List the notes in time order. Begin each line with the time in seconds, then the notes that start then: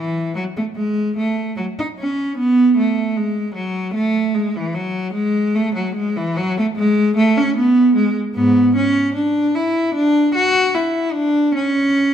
Already playing: E3
0.35 F#3
0.57 A3
0.76 G#3
1.17 A3
1.57 F#3
1.79 D#4
1.99 C#4
2.38 B3
2.77 A3
3.17 G#3
3.55 F#3
3.94 A3
4.34 G#3
4.56 E3
4.75 F#3
5.14 G#3
5.55 A3
5.75 F#3
5.95 G#3
6.16 E3
6.37 F#3
6.58 A3
6.76 G#3
7.17 A3
7.37 C#4
7.57 B3
7.96 G#3
8.35 G#2 B3
8.76 C#4
9.15 D4
9.55 E4
9.95 D4
10.35 F#4
10.75 E4
11.12 D4
11.55 C#4